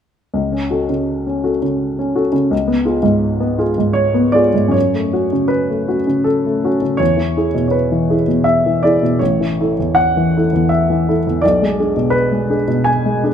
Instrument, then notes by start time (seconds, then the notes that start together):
grand piano
0.34 C#2
0.52 C#4
0.71 F#4 A4
0.89 C#3
1.27 C#4
1.44 F#4 A4
1.62 C#3
1.99 C#4
2.16 F#4 A4
2.32 C#3
2.51 C#2
2.68 B3
2.85 F4 G#4
3.03 G#2
3.40 B3
3.58 F4 G#4
3.78 G#2
3.93 C#5
4.14 B3
4.32 F4 G#4 D5
4.54 G#2
4.68 F#2 C#5
4.94 A3
5.13 C#4 F#4
5.32 C#3
5.48 B4
5.70 A3
5.88 C#4 F#4
6.07 C#3
6.24 A4
6.46 A3
6.64 C#4 F#4
6.82 C#3
6.97 E2 C#5
7.17 E3
7.37 E4 G#4
7.54 B2
7.68 B4 C#5
7.92 E3
8.10 E4 G#4
8.28 B2
8.44 E5
8.66 E3
8.83 E4 G#4 D5
9.03 B2
9.19 A1 C#5
9.40 E3
9.61 E4 A4
9.79 E2
9.95 F#5
10.17 E3
10.37 E4 A4
10.53 E2
10.69 E5
10.90 E3
11.09 E4 A4
11.27 E2
11.42 B1 D5
11.62 G#3
11.80 D4 G#4
11.97 B2
12.10 B4
12.32 G#3
12.50 D4 G#4
12.68 B2
12.84 G#5
13.06 G#3
13.23 D4 G#4